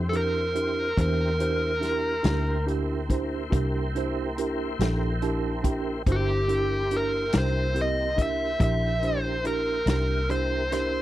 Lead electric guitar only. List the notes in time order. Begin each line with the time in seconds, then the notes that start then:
0.09 A4
0.16 A#4
1.01 A#4
6.12 G4
6.97 A#4
7.38 C5
7.81 D#5
8.22 E5
8.64 E5
9.05 C5
9.47 A#4
9.90 A#4
10.31 C5
10.73 C5